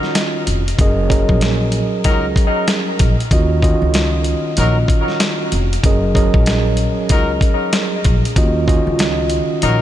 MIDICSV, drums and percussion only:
0, 0, Header, 1, 2, 480
1, 0, Start_track
1, 0, Key_signature, 6, "major"
1, 0, Tempo, 631579
1, 597, Time_signature, 4, 2, 24, 8
1, 7461, End_track
2, 0, Start_track
2, 0, Title_t, "Drums"
2, 24, Note_on_c, 9, 38, 40
2, 100, Note_off_c, 9, 38, 0
2, 115, Note_on_c, 9, 42, 105
2, 116, Note_on_c, 9, 38, 117
2, 191, Note_off_c, 9, 42, 0
2, 192, Note_off_c, 9, 38, 0
2, 357, Note_on_c, 9, 42, 77
2, 433, Note_off_c, 9, 42, 0
2, 516, Note_on_c, 9, 42, 54
2, 592, Note_off_c, 9, 42, 0
2, 597, Note_on_c, 9, 36, 116
2, 600, Note_on_c, 9, 42, 94
2, 673, Note_off_c, 9, 36, 0
2, 676, Note_off_c, 9, 42, 0
2, 836, Note_on_c, 9, 36, 97
2, 848, Note_on_c, 9, 42, 73
2, 912, Note_off_c, 9, 36, 0
2, 924, Note_off_c, 9, 42, 0
2, 980, Note_on_c, 9, 36, 94
2, 1056, Note_off_c, 9, 36, 0
2, 1073, Note_on_c, 9, 42, 96
2, 1082, Note_on_c, 9, 38, 126
2, 1149, Note_off_c, 9, 42, 0
2, 1158, Note_off_c, 9, 38, 0
2, 1306, Note_on_c, 9, 42, 68
2, 1382, Note_off_c, 9, 42, 0
2, 1553, Note_on_c, 9, 42, 101
2, 1556, Note_on_c, 9, 36, 90
2, 1629, Note_off_c, 9, 42, 0
2, 1632, Note_off_c, 9, 36, 0
2, 1793, Note_on_c, 9, 36, 91
2, 1804, Note_on_c, 9, 42, 67
2, 1869, Note_off_c, 9, 36, 0
2, 1880, Note_off_c, 9, 42, 0
2, 2034, Note_on_c, 9, 42, 102
2, 2035, Note_on_c, 9, 38, 121
2, 2110, Note_off_c, 9, 42, 0
2, 2111, Note_off_c, 9, 38, 0
2, 2275, Note_on_c, 9, 42, 81
2, 2279, Note_on_c, 9, 36, 101
2, 2351, Note_off_c, 9, 42, 0
2, 2355, Note_off_c, 9, 36, 0
2, 2435, Note_on_c, 9, 42, 55
2, 2511, Note_off_c, 9, 42, 0
2, 2516, Note_on_c, 9, 36, 111
2, 2518, Note_on_c, 9, 42, 92
2, 2592, Note_off_c, 9, 36, 0
2, 2594, Note_off_c, 9, 42, 0
2, 2755, Note_on_c, 9, 36, 93
2, 2767, Note_on_c, 9, 42, 72
2, 2831, Note_off_c, 9, 36, 0
2, 2843, Note_off_c, 9, 42, 0
2, 2993, Note_on_c, 9, 42, 96
2, 3002, Note_on_c, 9, 38, 121
2, 3069, Note_off_c, 9, 42, 0
2, 3078, Note_off_c, 9, 38, 0
2, 3225, Note_on_c, 9, 42, 66
2, 3301, Note_off_c, 9, 42, 0
2, 3471, Note_on_c, 9, 42, 100
2, 3547, Note_off_c, 9, 42, 0
2, 3711, Note_on_c, 9, 36, 92
2, 3721, Note_on_c, 9, 42, 71
2, 3787, Note_off_c, 9, 36, 0
2, 3797, Note_off_c, 9, 42, 0
2, 3861, Note_on_c, 9, 38, 39
2, 3937, Note_off_c, 9, 38, 0
2, 3952, Note_on_c, 9, 42, 103
2, 3954, Note_on_c, 9, 38, 117
2, 4028, Note_off_c, 9, 42, 0
2, 4030, Note_off_c, 9, 38, 0
2, 4194, Note_on_c, 9, 42, 80
2, 4270, Note_off_c, 9, 42, 0
2, 4354, Note_on_c, 9, 42, 55
2, 4430, Note_off_c, 9, 42, 0
2, 4435, Note_on_c, 9, 36, 113
2, 4437, Note_on_c, 9, 42, 94
2, 4511, Note_off_c, 9, 36, 0
2, 4513, Note_off_c, 9, 42, 0
2, 4674, Note_on_c, 9, 36, 97
2, 4686, Note_on_c, 9, 42, 72
2, 4750, Note_off_c, 9, 36, 0
2, 4762, Note_off_c, 9, 42, 0
2, 4818, Note_on_c, 9, 36, 97
2, 4894, Note_off_c, 9, 36, 0
2, 4911, Note_on_c, 9, 42, 92
2, 4920, Note_on_c, 9, 38, 125
2, 4987, Note_off_c, 9, 42, 0
2, 4996, Note_off_c, 9, 38, 0
2, 5144, Note_on_c, 9, 42, 69
2, 5220, Note_off_c, 9, 42, 0
2, 5391, Note_on_c, 9, 42, 102
2, 5395, Note_on_c, 9, 36, 93
2, 5467, Note_off_c, 9, 42, 0
2, 5471, Note_off_c, 9, 36, 0
2, 5631, Note_on_c, 9, 36, 93
2, 5641, Note_on_c, 9, 42, 68
2, 5707, Note_off_c, 9, 36, 0
2, 5717, Note_off_c, 9, 42, 0
2, 5872, Note_on_c, 9, 42, 103
2, 5874, Note_on_c, 9, 38, 117
2, 5948, Note_off_c, 9, 42, 0
2, 5950, Note_off_c, 9, 38, 0
2, 6113, Note_on_c, 9, 42, 78
2, 6118, Note_on_c, 9, 36, 98
2, 6189, Note_off_c, 9, 42, 0
2, 6194, Note_off_c, 9, 36, 0
2, 6273, Note_on_c, 9, 42, 55
2, 6349, Note_off_c, 9, 42, 0
2, 6355, Note_on_c, 9, 36, 117
2, 6357, Note_on_c, 9, 42, 94
2, 6431, Note_off_c, 9, 36, 0
2, 6433, Note_off_c, 9, 42, 0
2, 6595, Note_on_c, 9, 36, 98
2, 6606, Note_on_c, 9, 42, 73
2, 6671, Note_off_c, 9, 36, 0
2, 6682, Note_off_c, 9, 42, 0
2, 6832, Note_on_c, 9, 42, 96
2, 6841, Note_on_c, 9, 38, 123
2, 6908, Note_off_c, 9, 42, 0
2, 6917, Note_off_c, 9, 38, 0
2, 7065, Note_on_c, 9, 42, 68
2, 7141, Note_off_c, 9, 42, 0
2, 7311, Note_on_c, 9, 42, 101
2, 7387, Note_off_c, 9, 42, 0
2, 7461, End_track
0, 0, End_of_file